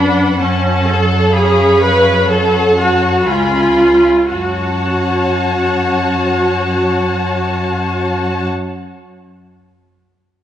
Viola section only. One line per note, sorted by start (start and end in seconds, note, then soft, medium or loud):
0.00 0.39 D4 medium
0.41 0.87 C#4 medium
0.88 1.36 A4 medium
1.36 1.84 G#4 medium
1.84 2.31 B4 medium
2.32 2.80 A4 medium
2.80 3.29 F#4 soft
3.30 4.31 F4 soft
4.31 8.47 F#4 soft